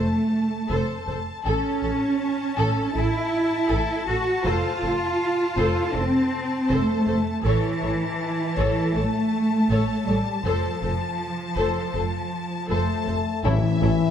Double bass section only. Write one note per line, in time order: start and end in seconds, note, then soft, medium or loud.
0.70 0.78 F1 medium
1.08 1.16 F1 soft
1.45 1.53 A1 medium
1.83 1.91 A1 soft
2.58 2.66 A1 medium
2.96 3.04 A1 soft
3.71 3.79 A1 medium
4.08 4.16 A1 soft
4.45 4.53 F1 medium
4.83 4.91 F1 soft
5.57 5.65 F1 medium
5.95 6.03 F1 soft
6.70 6.78 F1 medium
7.07 7.15 F1 soft
7.44 7.52 A1 medium
7.83 7.91 A1 soft
8.57 8.65 A1 medium
8.96 9.04 A1 soft
9.70 9.78 A1 medium
10.07 10.15 A1 soft
10.45 10.53 F1 medium
10.82 10.90 F1 soft
11.57 11.65 F1 medium
11.95 12.03 F1 soft
12.69 12.77 F1 medium
13.08 13.16 F1 soft
13.44 13.52 A1 medium
13.83 13.91 A1 medium